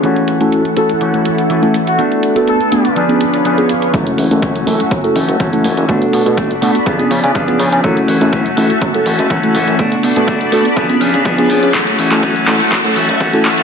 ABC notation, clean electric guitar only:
X:1
M:4/4
L:1/16
Q:1/4=123
K:F#m
V:1 name="Clean electric guitar"
[E,A,CF]8 [E,A,CF]4 [E,A,CF]4 | [A,DF]8 [^E,B,DG]4 [E,B,DG]4 | [E,A,CF] [A,CF] [E,A,CF]2 [E,A,CF]2 [E,A,CF] [A,CF]2 [A,CF] [E,A,CF] [A,CF] [E,A,CF]2 [E,A,CF]2 | [A,DF] [DF] [A,DF]2 [A,DF] [DF] [A,DF] [DF] [^E,B,DG] [B,DG] [E,B,DG] [B,DG] [E,B,DG]2 [E,B,DG]2 |
[E,A,CF] [A,CF] [E,A,CF]2 [E,A,CF] [A,CF] [E,A,CF] [A,CF]2 [A,CF] [E,A,CF] [A,CF] [E,A,CF]2 [E,A,CF]2 | [A,DF] [DF] [A,DF]2 [A,DF]2 [A,DF] [DF] [^E,B,DG] [B,DG] [E,B,DG] [B,DG] [E,B,DG]2 [E,B,DG]2 | [E,A,CF] [A,CF] [E,A,CF]2 [E,A,CF]2 [E,A,CF] [A,CF]2 [A,CF] [E,A,CF] [A,CF] [E,A,CF]2 [E,A,CF]2 |]